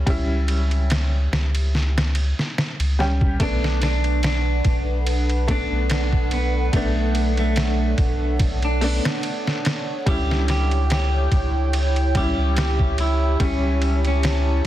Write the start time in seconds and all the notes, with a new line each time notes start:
Already playing: G3 C#4 E4
0.06 C#2 G3 C#4 E4, kick, ride
0.48 ride
0.71 ride
0.90 snare, ride
1.32 C#2, snare
1.55 ride
1.75 snare
1.98 snare
2.15 ride
2.39 snare
2.58 snare
2.79 C#2, ride
2.99 G3 C#4 G4, snare
3.21 kick
3.40 B1 A3 B3 D4 A4 B4 F#5, kick, ride
3.64 snare
3.82 D4, snare, ride
4.04 ride
4.23 D4, snare, ride
4.64 B1, kick, ride
5.06 ride
5.30 ride
5.48 A3 B3 D4, kick, ride
5.72 B1
5.90 D4, snare, ride
6.13 kick
6.31 B3, ride
6.73 B1 A3 B3 D4 C#5, kick, ride
7.15 ride
7.37 A3, ride
7.56 snare, ride
7.98 B1, kick, ride
8.39 kick, ride
8.62 D4, ride
8.81 A3 B3 D4, open hi-hat
9.05 snare
9.23 ride
9.47 snare
9.65 snare, ride
10.06 C#2 G3 C#4 E4 G4 G5, kick, ride
10.31 snare
10.48 G4, snare, ride
10.71 ride
10.90 G4, snare, ride
11.32 C#2, kick, ride
11.73 ride
11.96 ride
12.15 G3 C#4 E4 G4, kick, ride
12.37 C#2
12.57 G4, snare, ride
12.79 kick
12.98 E4, ride
13.40 C#2 G3 C#4 E4 A5, kick, ride
13.82 ride
14.05 C#4, ride
14.23 snare, ride